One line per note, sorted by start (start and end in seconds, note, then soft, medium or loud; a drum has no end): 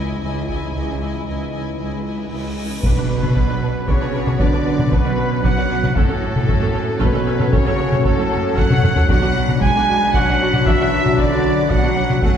0.00 0.16 C#2 medium
0.00 2.54 E3 medium
0.00 2.54 D#4 medium
0.00 0.21 E4 soft
0.00 0.21 D#5 soft
0.00 0.20 G#5 soft
0.21 0.68 C#2 medium
0.21 0.69 C#2 medium
0.21 0.48 E4 soft
0.21 0.48 D#5 soft
0.21 0.46 G#5 soft
0.47 0.74 E4 soft
0.47 0.74 D#5 soft
0.47 0.73 G#5 medium
0.47 taiko soft
0.74 1.20 C#2 medium
0.74 1.21 C#2 medium
0.74 0.99 E4 soft
0.74 1.00 D#5 soft
0.74 1.00 G#5 soft
1.00 1.26 E4 soft
1.00 1.25 D#5 soft
1.00 1.26 G#5 soft
1.26 1.73 C#2 soft
1.26 1.53 E4 soft
1.26 1.52 D#5 soft
1.26 1.52 G#5 soft
1.26 cymbal swell soft
1.53 1.79 E4 soft
1.53 1.76 D#5 soft
1.53 1.77 G#5 soft
1.77 2.25 C#2 soft
1.77 2.04 E4 soft
1.77 2.04 D#5 soft
1.77 2.04 G#5 soft
2.05 2.30 E4 soft
2.05 2.29 D#5 soft
2.05 2.30 G#5 soft
2.30 2.77 C#2 soft
2.30 2.57 E4 soft
2.30 2.56 D#5 soft
2.30 2.55 G#5 soft
2.56 2.83 E4 soft
2.56 2.83 D#5 soft
2.56 2.82 G#5 soft
2.82 2.89 B1 medium
2.82 5.93 F#2 medium
2.82 3.84 B2 medium
2.82 3.58 B2 medium
2.82 5.93 F#3 medium
2.82 5.93 B3 medium
2.82 2.90 D4 medium
2.82 9.06 F#4 medium
2.82 5.93 F#4 medium
2.82 3.83 B4 medium
2.82 3.84 B4 medium
2.82 3.89 B4 medium
2.82 5.93 B4 medium
2.82 2.90 B4 medium
2.82 9.06 F#5 medium
2.82 taiko medium
2.82 impact medium
2.97 3.02 B1 soft
2.97 3.02 D4 soft
2.97 3.02 B4 soft
3.09 3.15 B1 soft
3.09 3.14 D4 soft
3.09 3.14 B4 soft
3.22 3.28 B1 soft
3.22 3.27 D4 medium
3.22 3.27 B4 soft
3.22 taiko mid soft
3.35 3.42 B1 medium
3.35 3.40 D4 medium
3.35 3.40 B4 medium
3.35 taiko medium
3.49 3.55 B1 soft
3.49 3.54 D4 soft
3.49 3.54 B4 soft
3.62 3.68 B1 soft
3.62 3.67 D4 medium
3.62 3.67 B4 medium
3.87 3.93 B1 medium
3.87 4.40 C#3 medium
3.87 3.92 D4 medium
3.87 3.93 B4 medium
3.87 4.40 C#5 medium
3.87 4.39 C#5 medium
3.87 4.40 C#5 medium
3.87 taiko medium
4.00 4.06 B1 soft
4.00 4.05 D4 medium
4.00 4.06 B4 medium
4.14 4.19 B1 soft
4.14 4.19 D4 medium
4.14 4.19 B4 medium
4.26 4.32 B1 medium
4.26 4.32 D4 medium
4.26 4.32 B4 medium
4.26 taiko mid soft
4.39 4.45 B1 medium
4.39 4.92 D3 medium
4.39 4.45 D4 medium
4.39 4.45 B4 medium
4.39 4.91 D5 medium
4.39 4.92 D5 medium
4.39 taiko medium
4.52 4.58 B1 soft
4.52 4.58 D4 soft
4.52 4.58 B4 medium
4.65 4.71 B1 medium
4.65 4.71 D4 soft
4.65 4.71 B4 soft
4.78 4.84 B1 soft
4.78 4.84 D4 soft
4.78 4.84 B4 soft
4.78 taiko mid medium
4.90 4.97 B1 medium
4.90 5.45 B2 medium
4.90 4.97 D4 medium
4.90 5.43 B4 medium
4.90 4.97 B4 medium
4.90 5.43 B4 medium
4.90 5.45 B4 medium
4.90 taiko medium
5.04 5.11 B1 medium
5.04 5.10 D4 medium
5.04 5.10 B4 soft
5.17 5.24 B1 soft
5.17 5.23 D4 soft
5.17 5.23 B4 medium
5.43 5.50 B1 medium
5.43 5.97 F#3 medium
5.43 5.49 D4 medium
5.43 5.49 B4 medium
5.43 5.95 F#5 medium
5.43 5.98 F#5 loud
5.43 5.97 F#5 medium
5.43 taiko medium
5.56 5.63 B1 medium
5.56 5.62 D4 medium
5.56 5.62 B4 medium
5.70 5.77 B1 medium
5.70 5.75 D4 medium
5.70 5.75 B4 medium
5.83 5.89 B1 medium
5.83 5.89 D4 medium
5.83 5.89 B4 medium
5.83 taiko mid soft
5.95 6.02 F#1 medium
5.95 8.93 F#2 medium
5.95 6.99 A2 medium
5.95 8.93 F#3 medium
5.95 6.01 C#4 medium
5.95 9.10 C#4 medium
5.95 9.06 C#4 medium
5.95 6.98 A4 medium
5.95 6.01 A4 medium
5.95 7.02 A4 medium
5.95 9.06 A4 medium
5.95 6.99 A4 medium
5.95 9.10 G#5 medium
5.95 taiko medium
6.08 6.15 F#1 medium
6.08 6.14 C#4 medium
6.08 6.14 A4 medium
6.22 6.28 F#1 medium
6.22 6.27 C#4 soft
6.22 6.28 A4 soft
6.35 6.41 F#1 medium
6.35 6.41 C#4 soft
6.35 6.41 A4 soft
6.35 taiko mid soft
6.48 6.54 F#1 medium
6.48 6.54 C#4 medium
6.48 6.53 A4 medium
6.48 taiko medium
6.60 6.67 F#1 medium
6.60 6.66 C#4 medium
6.60 6.66 A4 medium
6.73 6.81 F#1 medium
6.73 6.79 C#4 medium
6.73 6.79 A4 medium
6.99 7.06 F#1 medium
6.99 7.53 B2 medium
6.99 7.05 C#4 medium
6.99 7.05 A4 medium
6.99 7.53 B4 medium
6.99 7.52 B4 medium
6.99 7.53 B4 medium
6.99 taiko medium
7.14 7.19 F#1 soft
7.14 7.19 C#4 medium
7.14 7.19 A4 medium
7.26 7.32 F#1 medium
7.26 7.31 C#4 medium
7.26 7.31 A4 medium
7.39 7.45 F#1 medium
7.39 7.45 C#4 medium
7.39 7.45 A4 medium
7.39 taiko mid soft
7.52 7.58 F#1 medium
7.52 8.04 C#3 medium
7.52 7.57 C#4 medium
7.52 7.57 A4 medium
7.52 8.05 C#5 medium
7.52 8.06 C#5 medium
7.52 8.05 C#5 medium
7.52 taiko medium
7.66 7.72 F#1 medium
7.66 7.72 C#4 medium
7.66 7.71 A4 medium
7.78 7.84 F#1 medium
7.78 7.84 C#4 medium
7.78 7.84 A4 medium
7.92 7.97 F#1 medium
7.92 7.97 C#4 medium
7.92 7.97 A4 medium
7.92 taiko mid medium
8.04 8.09 F#1 medium
8.04 8.56 A2 medium
8.04 8.10 C#4 medium
8.04 8.59 A4 loud
8.04 8.11 A4 medium
8.04 8.57 A4 medium
8.04 taiko medium
8.17 8.23 F#1 medium
8.17 8.24 C#4 medium
8.17 8.24 A4 medium
8.31 8.37 F#1 medium
8.31 8.36 C#4 medium
8.31 8.37 A4 medium
8.57 8.62 F#1 medium
8.57 9.08 F#3 medium
8.57 8.62 C#4 medium
8.57 8.62 A4 medium
8.57 9.09 F#5 loud
8.57 9.08 F#5 medium
8.57 9.09 F#5 medium
8.57 taiko medium
8.70 8.76 F#1 medium
8.70 8.76 C#4 medium
8.70 8.76 A4 medium
8.70 taiko mid medium
8.83 8.89 F#1 medium
8.83 8.88 C#4 medium
8.83 8.88 A4 medium
8.83 taiko low-mid loud
8.95 9.02 F#1 medium
8.95 9.00 C#4 medium
8.95 9.01 A4 medium
8.95 taiko low medium
9.08 9.15 B1 medium
9.08 12.19 F#2 medium
9.08 9.84 B2 medium
9.08 9.60 F#3 medium
9.08 12.19 F#3 medium
9.08 9.14 D4 medium
9.08 12.06 D4 medium
9.08 12.23 D4 medium
9.08 9.14 F#4 loud
9.08 12.06 F#4 medium
9.08 12.37 F#4 medium
9.08 12.23 B4 medium
9.08 9.43 F#5 medium
9.08 9.61 F#5 medium
9.08 12.19 F#5 medium
9.08 taiko medium
9.22 9.28 B1 medium
9.22 9.27 D4 medium
9.22 9.27 F#4 medium
9.35 9.40 B1 medium
9.35 9.41 D4 medium
9.35 9.41 F#4 medium
9.48 9.54 B1 medium
9.48 9.54 D4 medium
9.48 9.54 F#4 medium
9.48 taiko mid medium
9.61 9.67 B1 medium
9.61 10.14 G#3 medium
9.61 9.68 D4 medium
9.61 9.68 F#4 medium
9.61 10.10 G#5 loud
9.61 10.13 G#5 medium
9.61 10.14 G#5 medium
9.61 taiko medium
9.74 9.80 B1 medium
9.74 9.81 D4 medium
9.74 9.81 F#4 medium
9.88 9.93 B1 medium
9.88 9.94 D4 medium
9.88 9.94 F#4 medium
10.14 10.19 B1 medium
10.14 10.65 F#3 medium
10.14 10.20 D4 medium
10.14 10.20 F#4 medium
10.14 10.66 F#5 medium
10.14 10.68 F#5 loud
10.14 10.67 F#5 medium
10.14 taiko medium
10.28 10.33 B1 soft
10.28 10.33 D4 medium
10.28 10.33 F#4 medium
10.41 10.46 B1 medium
10.41 10.47 D4 medium
10.41 10.47 F#4 medium
10.53 10.59 B1 medium
10.53 10.59 D4 medium
10.53 10.59 F#4 medium
10.53 taiko mid soft
10.66 10.72 B1 medium
10.66 11.18 E3 medium
10.66 10.72 D4 medium
10.66 10.72 F#4 medium
10.66 11.17 E5 medium
10.66 11.18 E5 loud
10.66 11.19 E5 medium
10.66 taiko loud
10.80 10.85 B1 medium
10.80 10.85 D4 medium
10.80 10.85 F#4 medium
10.93 10.98 B1 medium
10.93 10.98 D4 medium
10.93 10.98 F#4 medium
11.06 11.12 B1 medium
11.06 11.11 D4 soft
11.06 11.11 F#4 medium
11.06 taiko mid medium
11.18 11.24 B1 medium
11.18 11.71 D3 medium
11.18 11.23 D4 medium
11.18 11.24 F#4 medium
11.18 11.72 D5 loud
11.18 11.70 D5 medium
11.18 11.71 D5 medium
11.18 taiko medium
11.31 11.37 B1 medium
11.31 11.36 D4 medium
11.31 11.36 F#4 medium
11.44 11.50 B1 medium
11.44 11.49 D4 medium
11.44 11.49 F#4 medium
11.70 11.76 B1 medium
11.70 12.21 F#3 medium
11.70 11.75 D4 medium
11.70 11.76 F#4 medium
11.70 12.22 F#5 loud
11.70 12.22 F#5 medium
11.70 taiko medium
11.83 11.89 B1 soft
11.83 11.88 D4 medium
11.83 11.88 F#4 medium
11.96 12.02 B1 medium
11.96 12.01 D4 medium
11.96 12.02 F#4 medium
12.09 12.15 B1 medium
12.09 12.14 D4 medium
12.09 12.15 F#4 medium
12.09 taiko mid soft
12.21 12.28 F#1 medium
12.21 12.29 F#2 soft
12.21 12.37 F#2 medium
12.21 12.37 F#3 medium
12.21 12.28 A3 medium
12.21 12.37 A3 medium
12.21 12.37 C#4 medium
12.21 12.37 A4 medium
12.21 12.28 A4 medium
12.21 12.37 A4 medium
12.21 12.37 F#5 medium
12.21 12.37 G#5 medium
12.21 taiko medium